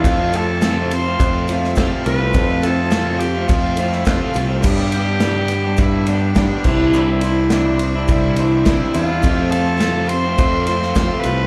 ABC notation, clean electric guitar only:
X:1
M:4/4
L:1/16
Q:1/4=104
K:Flyd
V:1 name="Clean electric guitar"
[F,,C,F,A,CF] [F,A,CF] [F,A,CF]2 [F,,C,F,A,CF] [F,A,CF]2 [F,A,CF]3 [F,A,CF]2 [F,,C,F,A,CF] [F,A,CF] [F,A,CF] [F,A,CF] | [F,,C,F,A,CF] [F,A,CF] [F,A,CF]2 [F,,C,F,A,CF] [F,A,CF]2 [F,A,CF]3 [F,A,CF]2 [F,,C,F,A,CF] [F,A,CF] [F,A,CF] [F,A,CF] | [G,,D,G,B,DG] [G,B,DG] [G,B,DG]2 [G,,D,G,B,DG] [G,B,DG]2 [G,B,DG]3 [G,B,DG]2 [G,,D,G,B,DG] [G,B,DG] [C,E,G,DE] [G,DE] | [C,E,G,DE] [G,DE] [E,G,DE]2 [C,E,G,DE] [G,DE]2 [G,DE]3 [E,G,DE]2 [C,E,G,DE] [G,DE] [E,G,DE] [G,DE] |
[F,,C,F,A,CF] [F,A,CF] [F,A,CF]2 [F,,C,F,A,CF] [F,A,CF]2 [F,A,CF]3 [F,A,CF]2 [F,,C,F,A,CF] [F,A,CF] [F,A,CF] [F,A,CF] |]